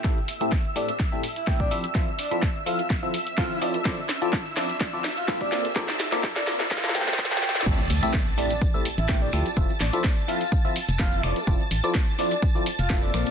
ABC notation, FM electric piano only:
X:1
M:4/4
L:1/16
Q:"Swing 16ths" 1/4=126
K:Dm
V:1 name="FM electric piano"
[A,,CEGAe] z2 [A,,CEGAe] z2 [A,,CEGAe] z2 [A,,CEGAe] z2 [A,,CEGAg]2 [F,CEGAe] z | [F,CEFAe] z2 [F,CEFAe] z2 [F,CEFAe] z2 [F,CEFAe] z2 [F,CEFAf]2 [F,CEFAd] z | [F,CEFAd] z2 [F,CEFAd] z2 [F,CEFAd] z2 [F,CEFAd] z2 [B,,CEFAe]2 [B,,CFABd] z | [B,,CFABd] z2 [B,,CFABd] z2 [B,,CFABd] z2 [B,,CFABd] [B,,CFABg] z2 [B,,CFABg]2 z |
[A,,CEGAe] z2 [A,,CEGAe] z2 [A,,CEGAe] z2 [A,,CEGAe] z2 [A,,CEGAg]2 [F,CEGAe] z | [F,CEFAe] z2 [F,CEFAe] z2 [F,CEFAe] z2 [F,CEFAe] z2 [F,CEFAf]2 [F,CEFAd] z | [F,CEFAd] z2 [F,CEFAd] z2 [F,CEFAd] z2 [F,CEFAd] z2 [B,,CEFAe]2 [B,,CFABd] z |]